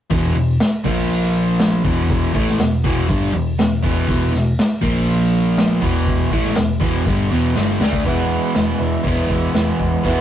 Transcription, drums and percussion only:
0.11 kick, open hi-hat
0.60 snare, open hi-hat
0.85 kick
1.10 open hi-hat
1.59 snare, open hi-hat
1.85 kick
2.10 kick, open hi-hat
2.35 kick
2.47 snare
2.59 snare, open hi-hat
2.84 kick
3.09 kick, open hi-hat
3.59 snare, open hi-hat
3.84 kick
4.09 kick, open hi-hat
4.35 snare
4.59 snare, open hi-hat
4.83 kick
5.09 open hi-hat
5.58 snare, open hi-hat
5.82 kick
6.07 kick, open hi-hat
6.31 kick
6.44 snare
6.56 snare, open hi-hat
6.81 kick
7.06 kick, open hi-hat
7.56 snare
7.81 snare
7.93 kick
8.05 kick, open hi-hat
8.55 snare, open hi-hat
9.04 kick, open hi-hat
9.29 kick
9.54 snare, open hi-hat
9.79 kick
10.04 kick, open hi-hat

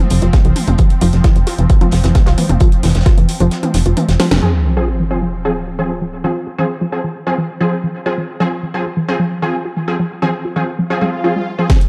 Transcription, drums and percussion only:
0.10 closed hi-hat, open hi-hat
0.22 closed hi-hat
0.33 kick, snare, closed hi-hat, mid tom
0.45 closed hi-hat
0.56 closed hi-hat, mid tom, open hi-hat
0.67 closed hi-hat, mid tom
0.78 kick, closed hi-hat
0.90 closed hi-hat
1.01 closed hi-hat, open hi-hat
1.13 snare, closed hi-hat
1.24 kick, snare, closed hi-hat
1.36 closed hi-hat
1.47 snare, closed hi-hat, open hi-hat
1.58 closed hi-hat
1.70 kick, closed hi-hat
1.81 closed hi-hat, mid tom
1.91 snare, closed hi-hat, open hi-hat
2.04 snare, closed hi-hat
2.15 kick, snare, closed hi-hat, mid tom
2.26 snare, closed hi-hat
2.38 closed hi-hat, mid tom, open hi-hat
2.49 closed hi-hat, mid tom
2.60 kick, closed hi-hat
2.72 closed hi-hat
2.83 snare, closed hi-hat, open hi-hat
2.89 snare, closed hi-hat
2.95 snare, closed hi-hat
3.01 snare, closed hi-hat
3.06 kick, snare, closed hi-hat
3.18 closed hi-hat
3.29 closed hi-hat, open hi-hat
3.40 closed hi-hat
3.51 snare, closed hi-hat
3.63 closed hi-hat, mid tom
3.74 snare, closed hi-hat, open hi-hat
3.86 closed hi-hat
3.97 closed hi-hat, mid tom
4.09 snare, closed hi-hat
4.20 snare, mid tom, open hi-hat
4.31 snare, closed hi-hat, mid tom
11.70 kick, snare, closed hi-hat
11.81 closed hi-hat

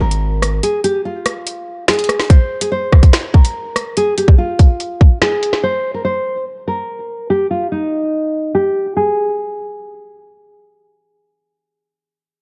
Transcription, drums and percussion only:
0.11 closed hi-hat
0.42 cross-stick, closed hi-hat
0.63 closed hi-hat
0.84 closed hi-hat
1.26 cross-stick, closed hi-hat
1.47 closed hi-hat
1.88 finger snap, snare, closed hi-hat
1.94 closed hi-hat
1.99 closed hi-hat
2.04 closed hi-hat
2.09 cross-stick, closed hi-hat
2.20 snare
2.30 kick, closed hi-hat
2.61 closed hi-hat
2.93 kick, cross-stick
3.03 kick, closed hi-hat
3.13 finger snap, snare, closed hi-hat
3.34 kick
3.45 closed hi-hat
3.76 cross-stick, closed hi-hat
3.97 closed hi-hat
4.18 closed hi-hat
4.28 kick
4.59 kick, closed hi-hat
4.80 closed hi-hat
5.01 kick
5.22 finger snap, snare, closed hi-hat
5.43 closed hi-hat
5.53 snare

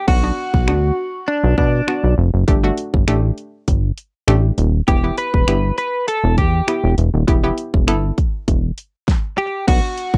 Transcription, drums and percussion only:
0.08 kick, crash
0.54 kick
0.68 finger snap
1.58 kick
1.88 finger snap
2.48 kick, closed hi-hat
2.77 closed hi-hat
2.94 kick
3.08 finger snap, closed hi-hat
3.38 closed hi-hat
3.68 kick, closed hi-hat
3.98 closed hi-hat
4.28 finger snap, closed hi-hat
4.58 closed hi-hat
4.88 kick, closed hi-hat
5.18 closed hi-hat
5.34 kick
5.48 finger snap, closed hi-hat
5.78 closed hi-hat
6.08 closed hi-hat
6.38 kick, closed hi-hat
6.68 finger snap, closed hi-hat
6.98 closed hi-hat
7.28 kick, closed hi-hat
7.58 closed hi-hat
7.74 kick
7.88 finger snap, closed hi-hat
8.18 kick, closed hi-hat
8.48 kick, closed hi-hat
8.78 closed hi-hat
9.08 kick, snare
9.68 kick, closed hi-hat, crash
9.98 closed hi-hat
10.14 kick

